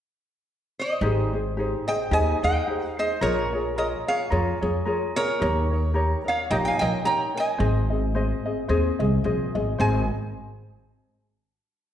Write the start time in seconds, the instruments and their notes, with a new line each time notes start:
0.79 resonator guitar played with a steel bar C5 D#5
1.01 upright bass G#1, ukulele D#4 G4 G#4 C5
1.33 ukulele D#4 G#4 C5
1.57 ukulele D#4 G4 G#4 C5
1.87 ukulele D#4 G#4 C5, resonator guitar played with a steel bar D#5 G5
2.11 upright bass D#2, ukulele D#4 G4 G#4 C5, resonator guitar played with a steel bar D#5 G#5
2.42 upright bass D#2, ukulele D#4 G#4 C5, resonator guitar played with a steel bar D#5 G5
2.67 ukulele D#4 G4 G#4 C5
2.88 resonator guitar played with a steel bar F5
2.98 ukulele D#4 G#4 C5, resonator guitar played with a steel bar C5 D#5
3.21 upright bass A#1, ukulele F4 G#4 A#4 C#5, resonator guitar played with a steel bar A#4 C#5
3.53 ukulele F4 G#4 C#5
3.76 ukulele F4 G#4 A#4 C#5, resonator guitar played with a steel bar A#4 D#5
4.07 ukulele F4 G#4 C#5, resonator guitar played with a steel bar C#5 F5
4.30 upright bass F2, ukulele F4 G#4 A#4 C#5
4.61 upright bass F2, ukulele F4 G#4 C#5
4.85 ukulele F4 G#4 A#4 C#5
5.16 ukulele F4 G#4 C#5, resonator guitar played with a steel bar A#4 C#5
5.40 upright bass D#2, ukulele D#4 G4 A#4 C#5
5.71 ukulele D#4 A#4 C#5
5.94 ukulele D#4 G4 A#4 C#5
6.24 ukulele D#4 A#4 C#5
6.28 resonator guitar played with a steel bar C#5 F5
6.50 upright bass A#1, ukulele D#4 G4 A#4 C#5, resonator guitar played with a steel bar D#5 G5
6.65 resonator guitar played with a steel bar F5 G#5
6.79 upright bass A#1, ukulele D#4 A#4 C#5, resonator guitar played with a steel bar D#5 G5
7.04 ukulele D#4 G4 A#4 C#5, resonator guitar played with a steel bar G5 A#5
7.34 ukulele D#4 A#4 C#5, resonator guitar played with a steel bar G#5
7.40 resonator guitar played with a steel bar D#5
7.58 upright bass G#1, ukulele C4 G#4 C5 D#5
7.90 ukulele C4 G#4 D#5
8.15 ukulele C4 G#4 C5 D#5
8.45 ukulele C4 G#4 D#5
8.68 upright bass D#2, ukulele C4 G#4 C5 D#5
8.99 upright bass C2, ukulele C4 G#4 D#5
9.24 upright bass A#1, ukulele C4 G#4 C5 D#5
9.55 upright bass G#1, ukulele C4 G#4 D#5
9.78 upright bass G#1, ukulele C4 G#4 C5 D#5, resonator guitar played with a steel bar G#5